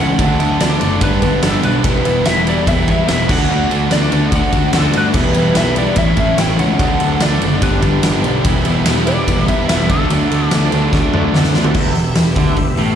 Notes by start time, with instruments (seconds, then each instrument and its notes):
Already playing: picked electric bass C#2, overdriven electric guitar A2 E3 E4, tonewheel organ A3 C#4 E4 C#5
0.00 overdriven electric guitar A3 C#4, lead electric guitar F#5
0.18 picked electric bass D2, overdriven electric guitar D3 F#3 A3 D4, tonewheel organ A3 D4 F#4 D5, kick, ride
0.39 picked electric bass D2, overdriven electric guitar F#3 A3 D4, ride
0.58 picked electric bass D2, overdriven electric guitar D3 F#3 A3 D4, lead electric guitar D5, snare, ride
0.80 picked electric bass F#1, overdriven electric guitar D3 F#3 A3 D4, ride
1.01 picked electric bass G1, overdriven electric guitar G2 D3 G3 B3 D4, tonewheel organ B3 D4 G4 D5, lead electric guitar B4, kick, ride
1.21 picked electric bass G1, overdriven electric guitar G2 D3 G3 B3 D4, kick, ride
1.42 picked electric bass G1, overdriven electric guitar G2 D3 G3 B3 D4, lead electric guitar A4, snare, ride
1.63 picked electric bass B1, overdriven electric guitar G3 B3 D4, lead electric guitar B4, ride
1.84 picked electric bass E1, overdriven electric guitar E3 G3 B3 E4, tonewheel organ B3 E4 G4 E5, kick, ride
2.05 picked electric bass E1, overdriven electric guitar G3 B3 E4, ride
2.25 picked electric bass E1, overdriven electric guitar E3 G3 B3 E4, lead electric guitar E5, snare, ride
2.47 overdriven electric guitar E3 G3 B3 E4, lead electric guitar D5, ride
2.67 picked electric bass E1, overdriven electric guitar E3 G3 B3 E4, lead electric guitar E5, kick, ride
2.88 picked electric bass E2, overdriven electric guitar E3 G3 B3 E4, lead electric guitar E5, kick, ride
3.08 picked electric bass E1, overdriven electric guitar E3 G3 B3 E4, lead electric guitar E5, snare, ride
3.28 picked electric bass D2, overdriven electric guitar D3 A3 D4 F#4, tonewheel organ A3 D4 F#4 D5, lead electric guitar F#5, kick, crash
3.48 picked electric bass D2, overdriven electric guitar D3 A3 D4 F#4
3.69 picked electric bass D2, overdriven electric guitar A3 D4 F#4, ride
3.90 picked electric bass D2, overdriven electric guitar D3 A3 D4 F#4, lead electric guitar D5, snare, ride
4.11 picked electric bass D2, overdriven electric guitar D3 A3 D4 F#4, ride
4.32 picked electric bass D2, overdriven electric guitar D3 A3 D4 F#4, kick, ride
4.36 lead electric guitar F#5
4.52 picked electric bass D2, overdriven electric guitar D3 A3 D4 F#4, kick, ride
4.73 picked electric bass D2, overdriven electric guitar D3 A3 D4 F#4, snare, ride
4.77 lead electric guitar A4
4.93 picked electric bass G2, overdriven electric guitar A3 D4 F#4, ride
4.98 lead electric guitar B4
5.13 picked electric bass E1, overdriven electric guitar E3 G3 B3 E4, tonewheel organ G3 B3 E4 B4, kick, crash
5.33 picked electric bass E1, overdriven electric guitar G3 B3 E4, ride
5.54 picked electric bass B1, overdriven electric guitar E3 G3 B3 E4, lead electric guitar E5, snare, ride
5.74 overdriven electric guitar E3 G3 B3 E4, ride
5.78 lead electric guitar D5
5.96 picked electric bass A1, overdriven electric guitar A2 E3 A3 C#4 E4, tonewheel organ A3 C#4 E4 C#5, lead electric guitar E5, kick, ride
6.16 picked electric bass A2, overdriven electric guitar A2 E3 A3 C#4 E4, lead electric guitar E5, kick, ride
6.36 picked electric bass A1, overdriven electric guitar A2 E3 A3 C#4 E4, lead electric guitar G5, snare, ride
6.57 picked electric bass C#2, overdriven electric guitar A3 C#4 E4, lead electric guitar F#5, ride
6.78 picked electric bass D2, overdriven electric guitar D3 F#3 A3 D4, tonewheel organ A3 D4 F#4 D5, kick, ride
6.98 picked electric bass D2, overdriven electric guitar F#3 A3 D4, ride
7.19 picked electric bass D2, overdriven electric guitar D3 F#3 A3 D4, lead electric guitar D5, snare, ride
7.40 picked electric bass F#1, overdriven electric guitar D3 F#3 A3 D4, ride
7.61 picked electric bass G1, overdriven electric guitar G2 D3 G3 B3 D4, tonewheel organ B3 D4 G4 D5, lead electric guitar B4, kick, ride
7.82 picked electric bass G1, overdriven electric guitar G2 D3 G3 B3 D4, kick, ride
8.02 picked electric bass G1, overdriven electric guitar G2 D3 G3 B3 D4, snare, ride
8.24 picked electric bass B1, overdriven electric guitar G3 B3 D4, ride
8.43 picked electric bass E1, overdriven electric guitar E3 G3 B3 E4, tonewheel organ B3 E4 G4 E5, kick, ride
8.65 picked electric bass E1, overdriven electric guitar G3 B3 E4, ride
8.85 picked electric bass E1, overdriven electric guitar E3 G3 B3 E4, snare, ride
9.06 overdriven electric guitar E3 G3 B3 E4, lead electric guitar D5, ride
9.27 picked electric bass E1, overdriven electric guitar E3 G3 B3 E4, kick, ride
9.48 picked electric bass E2, overdriven electric guitar E3 G3 B3 E4, lead electric guitar E5, kick, ride
9.68 picked electric bass E1, overdriven electric guitar E3 G3 B3 E4, lead electric guitar E5, snare, ride
9.89 picked electric bass D2, overdriven electric guitar D3 F#3 A3 D4, tonewheel organ A3 D4 F#4 D5, lead electric guitar A4, kick, ride
10.10 picked electric bass D2, overdriven electric guitar D3 F#3 A3 D4, ride
10.31 picked electric bass D2, overdriven electric guitar F#3 A3 D4, ride
10.47 lead electric guitar G4
10.51 picked electric bass D2, overdriven electric guitar D3 F#3 A3 D4, snare, ride
10.71 picked electric bass D2, overdriven electric guitar D3 F#3 A3 D4, ride
10.90 picked electric bass D2, overdriven electric guitar D3 F#3 A3 D4, kick, snare
11.12 picked electric bass D2, overdriven electric guitar D3 F#3 A3 D4, mid tom
11.33 picked electric bass D2, overdriven electric guitar D3 F#3 A3 D4, snare
11.44 tonewheel organ A3 B3, snare
11.50 tonewheel organ C4 D4, snare
11.55 picked electric bass D2, overdriven electric guitar F#3 A3 D4, tonewheel organ E4 F4
11.62 tonewheel organ G4 A4, floor tom
11.68 tonewheel organ B4 C5
11.73 picked electric bass E1, overdriven electric guitar E2, tonewheel organ B3 E4 G4 D5 E5, kick, crash
11.95 picked electric bass E1, overdriven electric guitar E2, open hi-hat
12.15 picked electric bass E1, overdriven electric guitar E2, snare, open hi-hat
12.36 picked electric bass D2, overdriven electric guitar D3, kick, open hi-hat
12.56 picked electric bass E1, overdriven electric guitar E2, kick, open hi-hat
12.77 picked electric bass A1, overdriven electric guitar A2, open hi-hat